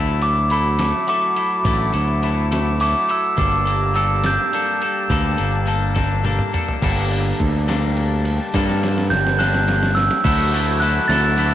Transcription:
Already playing: fingered electric bass D2, clean electric guitar D3 F#3 A3 D4 E4 A4, analog synth pad F#4 E5 D6, glockenspiel E6
0.21 clean electric guitar F#3 A3 E4 A4, glockenspiel D6, closed hi-hat
0.36 shaker
0.50 clean electric guitar F#3 A3 E4 A4, glockenspiel B5, closed hi-hat
0.78 clean electric guitar A3 E4 A4, glockenspiel D6, snare, closed hi-hat, shaker
1.07 clean electric guitar F#3 A3 E4 A4, glockenspiel D6, closed hi-hat, shaker
1.23 shaker
1.36 clean electric guitar A3 E4 A4, closed hi-hat
1.65 fingered electric bass A1, clean electric guitar D3 F#3 A3 E4 A4, kick, closed hi-hat, shaker
1.93 fingered electric bass D2, clean electric guitar F#3 A3 E4 A4, closed hi-hat
2.08 shaker
2.23 clean electric guitar F#3 A3 E4 A4, closed hi-hat
2.51 clean electric guitar A3 E4 A4, snare, closed hi-hat, shaker
2.65 shaker
2.80 clean electric guitar F#3 A3 E4 A4, glockenspiel D6, closed hi-hat
2.95 shaker
3.09 clean electric guitar A3 E4 A4, glockenspiel E6, closed hi-hat
3.37 fingered electric bass G1, clean electric guitar G2 G3 A#3 D4 A4, analog synth pad G4 A5, glockenspiel D6, kick, closed hi-hat, shaker
3.65 clean electric guitar A#3 D4 A4, closed hi-hat
3.82 shaker
3.94 clean electric guitar G3 A#3 D4 A4, glockenspiel E6, closed hi-hat
4.24 clean electric guitar A#3 D4 A4, glockenspiel G6, snare, closed hi-hat, shaker
4.53 clean electric guitar G3 A#3 D4 A4, closed hi-hat, shaker
4.68 shaker
4.82 clean electric guitar A#3 D4 A4, closed hi-hat
5.10 fingered electric bass D2, clean electric guitar G2 G3 A#3 D4 A4, kick, closed hi-hat, shaker
5.26 shaker
5.38 fingered electric bass G1, clean electric guitar A#3 D4 A4, closed hi-hat
5.54 shaker
5.66 clean electric guitar G3 A#3 D4 A4, closed hi-hat
5.83 shaker
5.95 clean electric guitar A#3 D4 A4, kick, snare, closed hi-hat, shaker
6.24 clean electric guitar G3 A#3 D4 A4, closed hi-hat, high tom
6.39 mid tom, shaker
6.53 clean electric guitar A#3 D4 A4, closed hi-hat, mid tom, shaker
6.69 floor tom
6.82 fingered electric bass G1, clean electric guitar G2 D3 G3 A#3 D4 A4, analog synth pad G4 A5, kick, crash, ride, shaker
7.11 ride
7.40 fingered electric bass D2, kick, ride
7.68 clean electric guitar G3 A#3 D4 A4, snare, ride, shaker
7.97 ride, shaker
8.12 shaker
8.25 ride
8.54 clean electric guitar G2 D3 G3 A#3 D4 A4, fingered electric bass G2, kick, snare, ride, shaker
8.69 snare
8.83 snare, ride
8.98 snare
9.10 fingered electric bass G1, glockenspiel G6, snare, ride
9.27 snare
9.37 clean electric guitar G3 A#3 D4 A4, glockenspiel F#6, snare, ride, shaker
9.54 snare
9.68 snare, ride, shaker
9.83 snare, shaker
9.94 glockenspiel E6, snare, ride
10.11 snare
10.24 fingered electric bass D2, clean electric guitar D3 F#3 A3 E4 A4, analog synth pad F#4 E5 D6, kick, crash, ride, shaker
10.39 shaker
10.52 clean electric guitar D3 F#3 A3 E4 A4, ride
10.68 shaker
10.79 clean electric guitar D3 F#3, glockenspiel F#6, ride, shaker
10.83 clean electric guitar A3 E4 A4
11.08 fingered electric bass D2, clean electric guitar D3 F#3 A3 E4 A4, glockenspiel A6, snare, ride, shaker
11.25 shaker
11.38 clean electric guitar D3 F#3 A3 E4 A4, ride

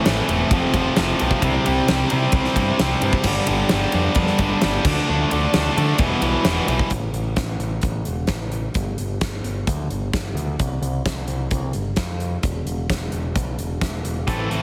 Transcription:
0.05 picked electric bass A1, overdriven electric guitar A2 E3 A3 C4 E4, snare, ride
0.28 picked electric bass E1, overdriven electric guitar A2 E3 A3 C4 E4, ride
0.51 picked electric bass F1, overdriven electric guitar F2 C3 F3 A3 C4 F4, kick, ride
0.74 picked electric bass F1, overdriven electric guitar F2 C3 F3 A3 C4 F4, kick, ride
0.96 picked electric bass F1, overdriven electric guitar F2 C3 F3 A3 C4 F4, snare, ride
1.19 picked electric bass B1, overdriven electric guitar F2 C3 F3 A3 C4 F4, ride
1.31 kick
1.42 picked electric bass C2, overdriven electric guitar C3 G3 C4 E4, kick, ride
1.64 picked electric bass C2, overdriven electric guitar C3 G3 C4 E4, ride
1.87 picked electric bass C2, overdriven electric guitar C3 G3 C4 E4, snare, ride
2.10 overdriven electric guitar C3 G3 C4 E4, picked electric bass C3, ride
2.32 picked electric bass C2, overdriven electric guitar C3 G3 C4 E4, kick, ride
2.44 snare
2.55 picked electric bass G2, overdriven electric guitar C3 G3 C4 E4, kick, ride
2.77 picked electric bass C2, overdriven electric guitar C3 G3 C4 E4, snare, ride
3.01 picked electric bass G2, overdriven electric guitar C3 G3 C4 E4, ride
3.13 kick
3.24 picked electric bass G1, overdriven electric guitar G2 D3 G3 B3 D4, kick, crash
3.47 picked electric bass G1, overdriven electric guitar G2 D3 G3 B3 D4, ride
3.69 picked electric bass G1, overdriven electric guitar G2 D3 G3 B3 D4, snare, ride
3.92 picked electric bass F2, overdriven electric guitar G2 D3 G3 B3 D4, ride
4.15 picked electric bass F2, overdriven electric guitar G2 D3 G3 B3 D4, kick, ride
4.26 snare
4.38 picked electric bass G1, overdriven electric guitar G2 D3 G3 B3 D4, kick, ride
4.61 picked electric bass G1, overdriven electric guitar G2 D3 G3 B3 D4, snare, ride
4.84 picked electric bass D2, overdriven electric guitar D3 F3 A3 D4, kick, crash
5.06 picked electric bass D2, overdriven electric guitar D3 F3 A3 D4
5.30 picked electric bass D2, overdriven electric guitar D3 F3 A3 D4, ride
5.52 picked electric bass D2, overdriven electric guitar D3 F3 A3 D4, snare, ride
5.75 overdriven electric guitar D3 F3 A3 D4, picked electric bass D3, ride
5.97 picked electric bass E1, overdriven electric guitar E2 B2 E3 G3 B3 E4, kick, ride
6.20 picked electric bass B1, overdriven electric guitar E2 B2 E3 G3 B3 E4, ride
6.44 picked electric bass E1, overdriven electric guitar E2 B2 E3 G3 B3 E4, snare, ride
6.67 picked electric bass B1, overdriven electric guitar E2 B2 E3 G3 B3 E4, ride
6.79 kick
6.90 picked electric bass A1, kick, closed hi-hat
7.13 picked electric bass A1, closed hi-hat
7.36 picked electric bass A1, kick, snare, closed hi-hat
7.59 picked electric bass A1, closed hi-hat
7.81 picked electric bass A1, kick, closed hi-hat
8.05 picked electric bass E1, closed hi-hat
8.27 picked electric bass A1, kick, snare, closed hi-hat
8.52 closed hi-hat
8.74 picked electric bass G1, kick, closed hi-hat
8.98 picked electric bass G1, closed hi-hat
9.21 picked electric bass G1, kick, snare, closed hi-hat
9.43 picked electric bass G1, closed hi-hat
9.67 picked electric bass D2, kick, closed hi-hat
9.90 picked electric bass G1, closed hi-hat
10.13 picked electric bass G1, kick, snare, closed hi-hat
10.34 picked electric bass D2, closed hi-hat
10.59 picked electric bass C2, kick, closed hi-hat
10.82 picked electric bass C2, closed hi-hat
11.06 picked electric bass C2, kick, snare, closed hi-hat
11.28 picked electric bass C2, closed hi-hat
11.51 picked electric bass C2, kick, closed hi-hat
11.73 picked electric bass G1, closed hi-hat
11.96 picked electric bass F2, kick, snare, closed hi-hat
12.20 closed hi-hat
12.43 picked electric bass E1, kick, closed hi-hat
12.65 picked electric bass E1, closed hi-hat
12.90 picked electric bass E1, kick, snare, closed hi-hat
13.12 picked electric bass E1, closed hi-hat
13.36 picked electric bass B1, kick, closed hi-hat
13.59 picked electric bass E1, closed hi-hat
13.81 kick, snare, closed hi-hat
14.05 picked electric bass E1, closed hi-hat
14.27 picked electric bass A1, overdriven electric guitar A2 E3 A3 C4 E4, clean electric guitar A4, kick, closed hi-hat
14.50 picked electric bass A1, overdriven electric guitar A2 E3 A3 C4 E4, muted clean electric guitar stroke, closed hi-hat

